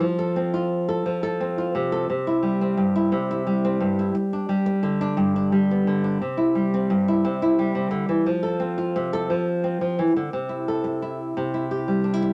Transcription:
\new Staff \with { instrumentName = "Nylon-string guitar" } { \time 12/8 \key c \major \tempo 4. = 117 << { r8 a'4 f'4 a'4 a'4 f'4 a'8 | r8 e'4 c'4 e'4 e'4 c'4 e'8 | r8 d'2 d'4 d'4 b4 d'8 | r8 e'4 c'4 e'4 e'2~ e'8 |
r8 a'4 f'4 a'4 r2 r8 | r8 e'8 a'4 e'4. e'8 g'4 d'16 e'8. | } \\ { f4 c'2 f4 c'4 c4 | c4 g4 g,4 c4 g4 g,4 | r4 g4 d4 g,4 g4 d4 | c4 g4 g,4 c4 g8 c8 d8 e8 |
f4 c'4 c4 f4 c'8 f8 e8 d8 | c2. c4. g4. | } >> }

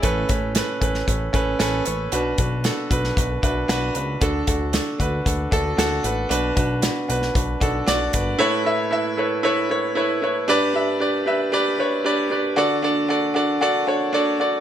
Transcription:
<<
  \new Staff \with { instrumentName = "Upright piano" } { \time 4/4 \key a \mixolydian \tempo 4 = 115 <cis' a' b'>8 <cis' a' b'>8 <cis' a' b'>8 <cis' a' b'>8 <cis' a' b'>8 <cis' a' b'>8 <cis' a' b'>8 <cis' a' cis''>8 | <d' fis' b'>8 <d' fis' b'>8 <d' fis' a'>8 <d' fis' b'>8 <d' fis' b'>8 <d' fis' b' e''>8 <d' fis' b' fis''>8 <d' fis' b' b''>8 | <d' fis' a'>8 <d' fis' a'>8 <d' fis' a'>8 <d' fis' b'>8 <d' fis' a'>8 <d' fis' a'>8 <d' fis' a'>8 <d' fis' b'>8 | <d' fis' b'>8 <d' fis' b'>8 <d' fis' b'>8 <d' fis' b'>8 <d' fis' b'>8 <d' fis' a'>8 <d' fis' d''>8 <d' fis' b'>8 |
<e' a' b' cis''>8 <e' a' b' e''>8 <e' a' b' e''>8 <e' a' b' cis''>8 <e' a' b' cis''>8 <e' a' b' cis''>8 <e' a' b' cis''>8 <e' a' b' cis''>8 | <d' g' b' d''>8 <d' g' b' e''>8 <d' g' b' d''>8 <d' g' b' e''>8 <d' g' b' d''>8 <d' g' b' cis''>8 <d' g' b' d''>8 <d' g' b' d''>8 | <d' fis' a' d''>8 <d' fis' a' d''>8 <d' fis' a' d''>8 <d' fis' a' d''>8 <d' fis' a' d''>8 <d' fis' a' cis''>8 <d' fis' a' d''>8 <d' fis' a' d''>8 | }
  \new Staff \with { instrumentName = "Upright piano" } { \clef bass \time 4/4 \key a \mixolydian a,4. r2 r8 | b,4. r2 r8 | d4. r2 r8 | b,4. r2 r8 |
a,4. r2 r8 | g,4. r2 r8 | d4. r2 r8 | }
  \new Staff \with { instrumentName = "Analog synth bass" } { \clef bass \time 4/4 \key a \mixolydian a,,8 a,,8. r16 a,,8 a,,8 a,,8 a,,8 a,,8 | b,,8 b,,8. r16 b,,8 b,,8 b,,8 b,,8 cis,8 | d,8 d,8. r16 d,8 d,8 d,8 d,8 a,,8 | b,,8 b,,8. r16 b,,8 b,,8 b,,8 b,,8 g,,8 |
r1 | r1 | r1 | }
  \new DrumStaff \with { instrumentName = "Drums" } \drummode { \time 4/4 <hh bd>8 <hh bd>8 <hh sn>8 <hh bd>16 sn16 <hh bd>8 <hh bd>8 <hh sn>8 hh8 | hh8 <hh bd>8 <hh sn>8 <hh bd>16 sn16 <hh bd>8 <hh bd>8 <hh sn>8 hh8 | <hh bd>8 <hh bd>8 <hh sn>8 <hh bd>8 <hh bd>8 <hh bd>8 <hh sn>8 hh8 | hh8 <hh bd>8 <hh sn>8 hh16 sn16 <hh bd>8 <hh bd>8 <hh sn>8 <hh bd>8 |
r4 r4 r4 r4 | r4 r4 r4 r4 | r4 r4 r4 r4 | }
>>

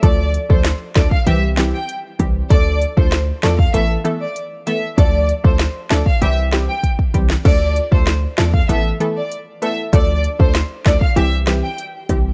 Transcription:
<<
  \new Staff \with { instrumentName = "Violin section" } { \time 4/4 \key d \dorian \tempo 4 = 97 d''8 r16 c''16 r8 d''16 f''16 e''16 r8 g''16 r4 | d''8 r16 c''16 r8 d''16 f''16 e''16 r8 d''16 r8 e''16 r16 | d''8 r16 c''16 r8 d''16 f''16 e''16 r8 g''16 r4 | d''8 r16 c''16 r8 d''16 f''16 e''16 r8 d''16 r8 e''16 r16 |
d''8 r16 c''16 r8 d''16 f''16 e''16 r8 g''16 r4 | }
  \new Staff \with { instrumentName = "Synth stab" } { \time 4/4 \key d \dorian <f a d' a'>8. <f a d' a'>16 r8 <f a d' a'>16 r16 <e g c' g'>8 <e g c' g'>16 r8. <e g c' g'>8 | <f a d' a'>8. <f a d' a'>16 r8 <f a d' a'>16 r16 <e a b a'>8 <e a b a'>16 r8. <e a b a'>8 | <f a d' a'>8. <f a d' a'>16 r8 <f a d' a'>16 r16 <e g c' g'>8 <e g c' g'>16 r8. <e g c' g'>8 | <f a d' a'>8. <f a d' a'>16 r8 <f a d' a'>16 r16 <e a b a'>8 <e a b a'>16 r8. <e a b a'>8 |
<f a d' a'>8. <f a d' a'>16 r8 <f a d' a'>16 r16 <e g c' g'>8 <e g c' g'>16 r8. <e g c' g'>8 | }
  \new Staff \with { instrumentName = "808-style bass" } { \clef bass \time 4/4 \key d \dorian d,8. d,8 r16 d,16 r16 c,4 r8 c,8 | d,8. d,8. e,8 a,,8 r4. | d,8. d,8 r16 d,16 r16 c,4 r8 c,8 | d,8. d,8. e,8 a,,8 r4. |
d,8. d,8 r16 d,16 r16 c,4 r8 c,8 | }
  \new DrumStaff \with { instrumentName = "Drums" } \drummode { \time 4/4 <hh bd>8 hh16 bd16 <hh ss sn>8 <hh bd ss sn>16 bd16 hh8 <hh ss sn>8 hh8 <hh bd>8 | <hh bd>8 hh16 bd16 <hh ss sn>8 <hh ss sn>16 bd16 hh8 hh8 hh8 hh8 | <hh bd>8 hh16 bd16 <hh ss sn>8 <hh ss sn>16 bd16 hh8 <hh ss sn>8 <hh bd>16 bd16 <hh bd>16 sn16 | <cymc bd>8 hh16 bd16 <hh ss sn>8 <hh ss sn>16 bd16 hh8 hh8 hh8 hh8 |
<hh bd>8 hh16 bd16 <hh ss sn>8 <hh bd ss sn>16 bd16 hh8 <hh ss sn>8 hh8 <hh bd>8 | }
>>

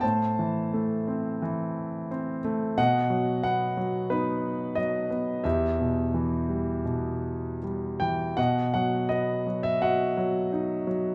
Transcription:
<<
  \new Staff \with { instrumentName = "Grand piano" } { \time 4/4 \key e \minor \tempo 4 = 87 << { a''2.~ a''8 r8 | fis''4 fis''4 b'4 dis''4 | e''2. r8 g''8 | \key b \phrygian fis''8 fis''8 dis''8. e''16 fis''2 | } \\ { c''2.~ c''8 r8 | dis''2 dis'2 | g'2. r4 | dis''2 dis''2 | } >> }
  \new Staff \with { instrumentName = "Grand piano" } { \clef bass \time 4/4 \key e \minor a,8 e8 a8 c'8 e4 c'8 a8 | b,8 fis8 b8 fis8 b4 fis8 b8 | e,8 b,8 e8 g8 b,4 g8 e8 | \key b \phrygian b,8 fis8 b8 fis8 fis'8 fis8 dis'8 fis8 | }
>>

